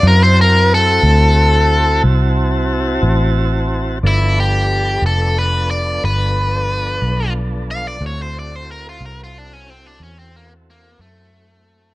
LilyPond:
<<
  \new Staff \with { instrumentName = "Overdriven electric guitar" } { \time 12/8 \key d \dorian \tempo 4. = 60 bes'16 c''16 bes'8 a'2 r2. | e'8 g'4 a'8 b'8 d''8 b'2 r8 f''16 d''16 | cis''16 c''16 d''16 c''16 bes'16 f'16 bes'16 f'16 d'16 cis'16 c'16 d'16 cis'16 c'16 bes16 r16 bes8 a4. | }
  \new Staff \with { instrumentName = "Tonewheel organ" } { \time 12/8 \key d \dorian <c' e' fis' a''>1. | <f b d' a'>1. | <c' e' fis' a'>1. | }
  \new Staff \with { instrumentName = "Fingered electric bass" } { \clef bass \time 12/8 \key d \dorian fis,4. d,4. c,4. a,,4. | g,,4. f,,4. g,,4. b,,4. | d,4. c,4. e,4. fis,4. | }
>>